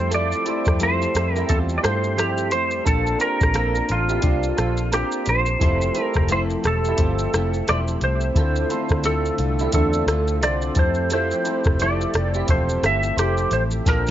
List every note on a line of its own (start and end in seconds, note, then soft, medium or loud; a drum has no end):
0.00 0.33 F2 loud
0.00 2.83 G3 medium
0.00 0.11 A3 soft
0.00 0.34 C4 medium
0.00 2.83 C4 medium
0.00 0.12 E4 soft
0.00 0.34 E4 medium
0.00 0.11 G4 medium
0.00 0.35 G4 medium
0.00 2.83 G4 medium
0.00 0.35 A4 medium
0.00 2.83 A4 medium
0.00 0.14 C5 medium
0.00 2.83 E5 medium
0.11 0.45 F3 medium
0.11 0.46 A3 medium
0.11 0.46 E4 medium
0.11 0.45 F4 medium
0.11 0.44 G4 medium
0.11 0.44 A4 medium
0.11 0.83 D5 loud
0.11 closed hi-hat medium
0.11 shaker medium
0.32 shaker soft
0.45 1.10 C4 medium
0.45 1.11 E4 medium
0.45 0.80 E4 soft
0.45 0.80 G4 soft
0.45 1.11 G4 medium
0.45 1.11 A4 medium
0.45 0.80 A4 medium
0.45 0.80 C5 medium
0.45 closed hi-hat soft
0.45 shaker soft
0.49 0.80 A3 soft
0.65 1.05 F2 medium
0.65 kick medium
0.65 cross-stick medium
0.65 shaker soft
0.79 1.14 F3 medium
0.79 1.15 A3 medium
0.79 1.15 E4 medium
0.79 1.01 F4 medium
0.79 1.12 G4 medium
0.79 1.00 A4 medium
0.79 closed hi-hat medium
0.79 shaker medium
0.83 1.35 C5 loud
1.02 shaker soft
1.14 1.42 F2 medium
1.14 1.50 E4 soft
1.14 1.48 G4 medium
1.14 cross-stick medium
1.14 closed hi-hat soft
1.14 shaker medium
1.18 1.49 A3 soft
1.35 1.49 E4 medium
1.35 1.49 G4 medium
1.35 1.52 A#4 loud
1.35 shaker soft
1.47 1.77 E2 medium
1.47 1.84 A3 medium
1.47 2.37 C4 medium
1.47 2.38 G4 medium
1.47 1.57 A4 medium
1.47 2.38 C5 medium
1.47 2.37 E5 medium
1.47 kick medium
1.47 closed hi-hat medium
1.47 shaker medium
1.51 1.83 C4 medium
1.51 1.83 F4 medium
1.51 1.82 G4 medium
1.69 shaker soft
1.78 1.83 D5 medium
1.83 2.53 G2 medium
1.83 2.16 A3 medium
1.83 2.18 E4 medium
1.83 2.03 F4 medium
1.83 2.17 G4 medium
1.83 2.03 A4 medium
1.83 2.19 C5 medium
1.83 cross-stick loud
1.83 closed hi-hat medium
1.83 shaker medium
2.04 shaker medium
2.17 2.51 F3 medium
2.17 2.52 A3 medium
2.17 2.51 E4 medium
2.17 2.50 G4 medium
2.17 2.49 G4 medium
2.17 2.70 A4 medium
2.17 2.70 C5 medium
2.17 cross-stick medium
2.17 closed hi-hat medium
2.17 shaker medium
2.38 shaker medium
2.50 2.80 F2 loud
2.50 2.86 E4 soft
2.50 2.85 G4 soft
2.50 2.87 C5 medium
2.50 closed hi-hat medium
2.50 shaker medium
2.54 2.85 A3 soft
2.71 shaker medium
2.84 3.14 A#1 loud
2.84 5.58 A#3 medium
2.84 3.20 A#3 medium
2.84 3.09 C4 medium
2.84 5.58 C4 medium
2.84 5.57 D4 medium
2.84 3.10 D4 medium
2.84 3.21 D4 medium
2.84 3.10 F4 medium
2.84 3.19 F4 medium
2.84 3.18 A4 loud
2.84 3.10 A4 medium
2.84 3.21 A4 medium
2.84 3.18 C5 medium
2.84 kick loud
2.84 closed hi-hat medium
2.84 shaker medium
3.07 shaker soft
3.19 3.85 C4 medium
3.19 3.85 D4 medium
3.19 3.85 F4 medium
3.19 3.53 G4 medium
3.19 3.52 A#4 medium
3.19 3.92 A#4 loud
3.19 3.85 C5 medium
3.19 closed hi-hat soft
3.19 shaker soft
3.23 3.54 D4 soft
3.41 3.80 A#1 medium
3.41 kick medium
3.41 cross-stick medium
3.41 shaker medium
3.54 3.89 A#3 medium
3.54 3.89 D4 medium
3.54 3.75 F4 medium
3.54 3.74 A4 medium
3.54 3.87 C5 medium
3.54 cross-stick medium
3.54 closed hi-hat medium
3.54 shaker medium
3.75 shaker soft
3.88 4.17 A1 medium
3.88 4.94 F4 medium
3.88 4.23 A4 soft
3.88 4.23 C5 soft
3.88 closed hi-hat soft
3.88 shaker soft
3.93 4.23 D4 soft
4.09 4.23 E4 soft
4.09 4.23 G4 medium
4.09 shaker medium
4.21 4.51 C2 medium
4.21 4.57 A#3 medium
4.21 5.11 C4 medium
4.21 5.12 D4 medium
4.21 4.56 D4 medium
4.21 4.58 D4 medium
4.21 5.12 F4 medium
4.21 4.56 F4 medium
4.21 5.12 G4 medium
4.21 4.57 A4 medium
4.21 kick medium
4.21 closed hi-hat medium
4.21 shaker medium
4.26 4.55 C5 medium
4.43 shaker medium
4.57 5.02 A#1 medium
4.57 4.92 D4 soft
4.57 4.78 F4 medium
4.57 4.77 A4 medium
4.57 4.93 A4 soft
4.57 4.92 C5 medium
4.57 cross-stick medium
4.57 closed hi-hat medium
4.57 shaker medium
4.77 shaker soft
4.92 5.27 A#3 medium
4.92 5.27 D4 medium
4.92 5.45 F4 medium
4.92 5.29 G4 medium
4.92 5.44 A#4 medium
4.92 5.24 C5 medium
4.92 cross-stick medium
4.92 closed hi-hat medium
4.92 shaker medium
5.12 shaker medium
5.26 5.55 A#1 medium
5.26 5.62 A4 medium
5.26 5.61 C5 medium
5.26 6.02 C5 loud
5.26 closed hi-hat soft
5.26 shaker medium
5.30 5.61 D4 soft
5.46 shaker soft
5.59 5.89 F1 medium
5.59 5.95 F3 medium
5.59 8.33 F3 medium
5.59 5.96 A3 medium
5.59 5.84 C4 medium
5.59 13.81 C4 medium
5.59 5.84 E4 medium
5.59 5.96 E4 medium
5.59 5.94 F4 medium
5.59 8.33 G4 medium
5.59 5.85 G4 medium
5.59 5.94 G4 medium
5.59 8.33 A4 medium
5.59 5.94 A4 medium
5.59 5.85 A4 medium
5.59 13.81 E5 medium
5.59 kick loud
5.59 closed hi-hat medium
5.59 shaker medium
5.82 shaker soft
5.94 6.60 C4 medium
5.94 6.60 E4 medium
5.94 6.30 E4 soft
5.94 6.30 G4 soft
5.94 6.60 G4 medium
5.94 6.61 A4 medium
5.94 6.29 A4 medium
5.94 6.28 C5 medium
5.94 closed hi-hat soft
5.94 shaker soft
5.99 6.29 A3 soft
5.99 6.31 A#4 loud
6.14 6.55 F1 medium
6.14 kick medium
6.14 cross-stick medium
6.14 shaker soft
6.29 6.64 F3 medium
6.29 6.64 A3 medium
6.29 6.64 E4 medium
6.29 6.50 F4 medium
6.29 6.62 G4 medium
6.29 6.50 A4 medium
6.29 6.41 C5 loud
6.29 closed hi-hat medium
6.29 shaker medium
6.50 shaker soft
6.63 6.92 E1 medium
6.63 6.97 A3 soft
6.63 6.99 E4 soft
6.63 6.98 G4 medium
6.63 cross-stick medium
6.63 closed hi-hat soft
6.63 shaker medium
6.67 7.72 A4 medium
6.85 7.00 E4 medium
6.85 7.00 G4 medium
6.85 shaker soft
6.96 7.26 G1 medium
6.96 7.32 F3 medium
6.96 7.33 A3 medium
6.96 7.86 C4 medium
6.96 7.87 G4 medium
6.96 7.87 C5 medium
6.96 7.86 E5 medium
6.96 kick medium
6.96 closed hi-hat medium
6.96 shaker medium
7.01 7.33 C4 medium
7.01 7.33 F4 medium
7.01 7.32 G4 medium
7.19 shaker medium
7.33 7.61 F1 medium
7.33 7.67 A3 soft
7.33 7.68 E4 soft
7.33 7.54 F4 medium
7.33 7.67 G4 medium
7.33 7.54 A4 medium
7.33 cross-stick loud
7.33 closed hi-hat medium
7.33 shaker medium
7.54 shaker soft
7.67 7.96 E1 loud
7.67 8.01 F3 medium
7.67 8.02 A3 medium
7.67 8.02 E4 medium
7.67 8.00 G4 medium
7.67 8.20 C5 medium
7.67 7.78 D5 loud
7.67 cross-stick medium
7.67 closed hi-hat medium
7.67 shaker medium
7.71 8.21 A4 medium
7.88 shaker medium
8.01 8.29 C2 medium
8.01 8.36 A3 soft
8.01 8.37 E4 soft
8.01 8.36 G4 medium
8.01 9.09 C5 loud
8.01 closed hi-hat soft
8.01 shaker medium
8.21 shaker soft
8.34 8.63 D2 loud
8.34 10.73 D3 medium
8.34 8.70 D3 medium
8.34 10.73 A3 medium
8.34 8.71 A3 medium
8.34 8.59 C4 medium
8.34 10.74 D4 medium
8.34 8.59 E4 medium
8.34 8.60 F4 medium
8.34 8.60 A4 medium
8.34 8.69 A4 loud
8.34 kick loud
8.34 closed hi-hat medium
8.34 shaker medium
8.38 8.70 C4 medium
8.38 8.70 F4 medium
8.38 8.68 F4 medium
8.56 shaker soft
8.69 9.35 C4 medium
8.69 9.04 C4 soft
8.69 9.35 E4 medium
8.69 9.04 F4 soft
8.69 9.35 F4 medium
8.69 9.36 A4 medium
8.69 9.04 A4 medium
8.69 9.04 C5 medium
8.69 closed hi-hat soft
8.69 shaker soft
8.73 9.04 A3 soft
8.89 9.29 D2 medium
8.89 kick loud
8.89 cross-stick medium
8.89 shaker soft
9.03 9.38 D3 medium
9.03 9.39 A3 medium
9.03 9.39 C4 medium
9.03 9.37 F4 medium
9.03 9.26 F4 medium
9.03 9.73 A4 loud
9.03 9.25 A4 medium
9.03 closed hi-hat medium
9.03 shaker medium
9.25 shaker soft
9.38 9.66 C2 medium
9.38 9.73 A3 soft
9.38 9.74 C4 soft
9.38 9.73 F4 medium
9.38 closed hi-hat soft
9.38 shaker soft
9.59 9.73 E4 medium
9.59 9.73 G4 medium
9.59 shaker medium
9.72 10.01 E2 medium
9.72 10.07 D3 medium
9.72 10.08 A3 medium
9.72 10.62 C4 medium
9.72 10.09 C4 medium
9.72 10.07 D4 medium
9.72 10.62 F4 medium
9.72 10.06 F4 medium
9.72 10.63 A4 medium
9.72 10.45 A4 medium
9.72 10.62 E5 medium
9.72 kick medium
9.72 closed hi-hat medium
9.72 shaker medium
9.76 10.07 F4 medium
9.93 shaker medium
10.07 10.41 D2 medium
10.07 10.43 C4 medium
10.07 10.42 F4 medium
10.07 10.28 F4 medium
10.07 10.27 A4 medium
10.07 cross-stick loud
10.07 closed hi-hat medium
10.07 shaker medium
10.12 10.42 A3 soft
10.28 shaker medium
10.41 10.69 C2 loud
10.41 10.76 D3 medium
10.41 10.77 A3 medium
10.41 10.77 C4 medium
10.41 10.77 F4 medium
10.41 10.94 A4 medium
10.41 10.94 C5 medium
10.41 10.78 D5 loud
10.41 cross-stick medium
10.41 closed hi-hat medium
10.41 shaker medium
10.62 shaker medium
10.75 11.32 F2 loud
10.75 13.83 F3 medium
10.75 11.34 C4 medium
10.75 11.34 E4 medium
10.75 13.83 G4 medium
10.75 11.34 G4 medium
10.75 11.11 G4 medium
10.75 13.82 A4 medium
10.75 11.35 A4 medium
10.75 kick loud
10.75 closed hi-hat medium
10.75 shaker medium
10.79 11.11 A3 soft
10.79 11.12 E4 medium
10.79 11.12 C5 loud
10.95 shaker soft
11.10 11.45 F3 medium
11.10 11.46 A3 medium
11.10 11.46 E4 medium
11.10 11.45 F4 medium
11.10 11.44 G4 medium
11.10 11.44 A4 loud
11.10 11.83 C5 loud
11.10 closed hi-hat medium
11.10 shaker medium
11.31 shaker soft
11.43 12.09 C4 medium
11.43 12.10 E4 medium
11.43 12.10 G4 medium
11.43 11.80 G4 soft
11.43 11.79 A4 medium
11.43 12.11 C5 medium
11.43 11.78 C5 medium
11.43 closed hi-hat soft
11.43 shaker soft
11.48 11.80 A3 soft
11.48 11.81 E4 soft
11.64 12.05 F1 loud
11.64 kick loud
11.64 cross-stick medium
11.64 shaker medium
11.80 12.14 F3 medium
11.80 12.15 A3 medium
11.80 12.15 E4 medium
11.80 12.01 F4 medium
11.80 12.13 G4 medium
11.80 12.00 A4 medium
11.80 12.50 D5 loud
11.80 closed hi-hat medium
11.80 shaker medium
12.01 shaker soft
12.14 12.42 F1 medium
12.14 12.50 E4 medium
12.14 12.49 G4 medium
12.14 cross-stick medium
12.14 closed hi-hat medium
12.14 shaker medium
12.18 12.50 A3 soft
12.34 12.49 E4 medium
12.34 12.48 G4 medium
12.34 shaker medium
12.47 12.76 E1 medium
12.47 12.83 F3 medium
12.47 13.37 C4 medium
12.47 12.82 F4 medium
12.47 13.37 G4 medium
12.47 13.38 A4 medium
12.47 12.85 C5 medium
12.47 13.37 E5 medium
12.47 kick medium
12.47 closed hi-hat medium
12.47 shaker medium
12.51 12.84 A3 medium
12.51 12.82 C4 medium
12.51 12.82 G4 medium
12.69 shaker soft
12.83 13.10 G1 medium
12.83 13.18 E4 medium
12.83 13.03 F4 medium
12.83 13.17 G4 medium
12.83 13.03 A4 medium
12.83 13.16 E5 medium
12.83 cross-stick medium
12.83 closed hi-hat medium
12.83 shaker medium
12.87 13.18 A3 soft
13.03 shaker soft
13.17 13.45 F1 medium
13.17 13.52 F3 medium
13.17 13.52 A3 medium
13.17 13.52 E4 medium
13.17 13.54 G4 medium
13.17 13.50 G4 medium
13.17 13.69 A4 medium
13.17 13.69 C5 medium
13.17 cross-stick medium
13.17 closed hi-hat medium
13.17 shaker medium
13.38 shaker medium
13.51 13.79 A1 medium
13.51 13.86 E4 soft
13.51 13.86 G4 medium
13.51 13.62 C5 medium
13.51 closed hi-hat medium
13.51 shaker soft
13.55 13.85 A3 soft
13.71 shaker soft
13.85 14.11 A#1 medium
13.85 14.11 A#3 medium
13.85 14.09 C4 medium
13.85 14.11 C4 medium
13.85 14.10 D4 medium
13.85 14.11 D4 medium
13.85 14.10 F4 medium
13.85 14.11 F4 medium
13.85 14.11 A4 medium
13.85 14.11 A4 loud
13.85 14.11 C5 medium
13.85 kick loud
13.85 snare medium
13.85 closed hi-hat medium
13.85 shaker medium
13.89 14.11 A#4 loud
14.07 shaker soft